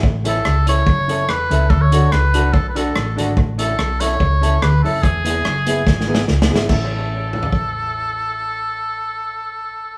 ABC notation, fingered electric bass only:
X:1
M:4/4
L:1/8
Q:"Swing" 1/4=144
K:A
V:1 name="Fingered electric bass" clef=bass
A,,,2 C,,2 F,,,2 E,,, C,, | D,,2 C,,2 B,,,2 A,,, G,,, | A,,,2 B,,,2 C,,2 D,, F,,, | E,,,2 F,,,2 G,,,2 C,, G,,, |
A,,,8- | A,,,8 |]